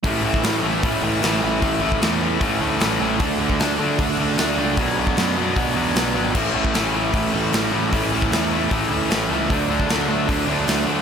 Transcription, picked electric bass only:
\new Staff \with { instrumentName = "Picked electric bass" } { \clef bass \time 4/4 \key a \major \tempo 4 = 152 a,,8 a,,8 a,,8 a,,8 a,,8 a,,8 a,,8 a,,8 | a,,4 e,4 a,,8 d,8 a,,8 a,,8 | d,8 d,8 d,8 d,8 d,8 d,8 d,8 cis,8 | b,,4 fis,4 b,,8 e,8 b,,8 gis,,8 |
a,,8 a,,8 a,,8 a,,8 a,,8 a,,8 a,,8 a,,8 | a,,4 e,4 a,,8 d,8 a,,8 cis,8 | d,8 d,8 d,8 d,8 d,8 d,8 d,8 d,8 | }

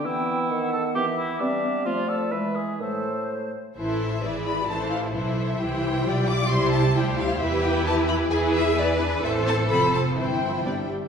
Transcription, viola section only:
\new Staff \with { instrumentName = "Viola section" } { \time 2/4 \key a \minor \tempo 4 = 132 << { r2 | r2 | r2 | r2 |
e'4 e'4 | e'4 e'4 | e'4 f'4 | e'4 e'4 |
\key e \phrygian e'2 | e'4 e'8 d'8 | c'4 c'4 | c'4 b8 r8 | } \\ { r2 | r2 | r2 | r2 |
e4 e4 | e4 e4 | e4 g4 | g4 g4 |
e2 | e4 e4 | e4 f4 | e8 f8 g8 r8 | } >> }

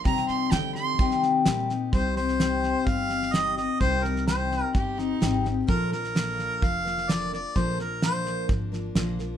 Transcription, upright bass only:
\new Staff \with { instrumentName = "Upright bass" } { \clef bass \time 4/4 \key c \minor \tempo 4 = 128 c8 r8 d4 ees4 bes,4 | c,2 g,,2 | c,2 g,,4 aes,,4 | bes,,2 f,,2 |
bes,,2 aes,,4 bes,,4 | }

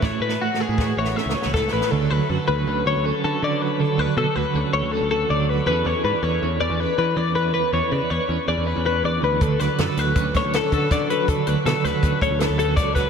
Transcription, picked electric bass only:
\new Staff \with { instrumentName = "Picked electric bass" } { \clef bass \time 5/4 \key d \lydian \tempo 4 = 160 a,,16 r16 a,8 r8. a,8. a,,8 r16 cis,16 r16 cis,8. a,,16 r16 | d,8 d,16 r16 fis,16 r16 d,8 d,8 d,16 d,8 r16 d8 d4~ | d8 d,16 r16 b,16 r16 d,16 r16 d,16 r16 d,16 d,8 d,8. d,4 | e,8 e,16 r16 gis,16 r16 e,8 e,8 e,16 e,8 r16 e8 e4~ |
e8 e,16 r16 cis16 r16 e,16 r16 e,16 r16 e,16 e,8 e,8. e,8 d,8 | d,8 d,16 r16 fis,16 r16 d,8 d,8 d,16 d,8 r16 d8 d4~ | d8 d,16 r16 b,16 r16 d,16 r16 d,16 r16 d,16 d,8 d,8. cis,4 | }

